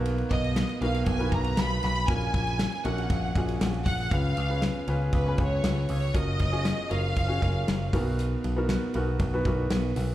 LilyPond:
<<
  \new Staff \with { instrumentName = "Violin section" } { \time 4/4 \key fis \major \tempo 4 = 118 r8 dis''4 eis''8 gis''8 ais''8 b''8 b''8 | gis''4. fis''4. r8 fis''8 | eis''4. r8 b'8 cis''4 cis''8 | dis''4. eis''2 r8 |
r1 | }
  \new Staff \with { instrumentName = "Grand piano" } { \time 4/4 \key fis \major <ais b dis' fis' ais'>4 r8 <ais b dis' fis' ais'>8 r16 <b dis' fis' ais' b'>4~ <b dis' fis' ais' b'>16 r8 | <ais cis' eis' fis' ais'>4~ <ais cis' eis' fis' ais'>16 r16 <ais cis' fis' ais'>8. r16 <ais cis' eis' fis' gis'>4~ <ais cis' eis' fis' gis'>16 r16 | <cis' eis' gis' b'>8 r16 <cis' eis' gis' b'>8 r16 <cis' eis' gis' b'>8 r16 <cis' eis' gis' b'>16 <cis' eis' gis' b'>4~ <cis' eis' gis' b'>16 r16 | <cis' eis' fis' ais'>8 r16 <cis' eis' fis' gis'>8 r16 <cis' eis' fis' ais'>8 r16 <cis' eis' fis' gis'>16 <cis' eis' fis' ais'>4 <b dis' fis' ais'>8~ |
<b dis' fis' ais'>8 r16 <b dis' fis' ais'>8 r16 <b dis' fis' ais'>8 r16 <b dis' fis' b'>16 <b dis' fis' ais'>4~ <b dis' fis' ais'>16 r16 | }
  \new Staff \with { instrumentName = "Grand piano" } { \clef bass \time 4/4 \key fis \major b,4 r2. | ais,4. r2 r8 | cis4. r2 r8 | r2. r8 b,8~ |
b,4 r2. | }
  \new Staff \with { instrumentName = "Picked electric bass" } { \clef bass \time 4/4 \key fis \major b,,8 b,,8. r16 b,,8 b,,8 b,,8 b,,8 b,,8 | ais,,8 ais,,8. r16 ais,,8 ais,,8 ais,,8 ais,,8 ais,,8 | cis,8 cis,8. r16 cis,8 cis,8 cis,8 cis,8 cis,8 | fis,,8 fis,,8. r16 fis,,8 fis,,8 fis,,8 fis,,8 b,,8~ |
b,,8 b,,8. r16 b,,8 b,,8 b,,8 b,,8 b,,8 | }
  \new DrumStaff \with { instrumentName = "Drums" } \drummode { \time 4/4 cymr16 cymr16 <bd cymr>16 cymr16 <cymr sn>16 cymr16 cymr16 cymr16 <bd cymr>16 cymr16 <bd cymr>16 cymr16 <cymr sn>16 cymr16 <cymr sn>16 cymr16 | <bd cymr>16 cymr16 <bd cymr>16 cymr16 <cymr sn>16 cymr16 cymr16 cymr16 <bd cymr>8 <bd cymr>16 cymr16 <cymr sn>16 cymr16 <hho bd cymr sn>16 cymr16 | <bd cymr>8 cymr8 <cymr sn>8 cymr8 <bd cymr>8 <bd cymr>8 <cymr sn>8 <hho cymr>8 | <hhp bd cymr>8 <bd cymr>8 <cymr sn>8 cymr8 <bd cymr>8 <bd cymr>8 <cymr sn>8 <hho bd cymr sn>8 |
<hhp cymr>8 cymr8 <cymr sn>8 cymr8 <bd cymr>8 <bd cymr>8 <cymr sn>8 <hho cymr sn>8 | }
>>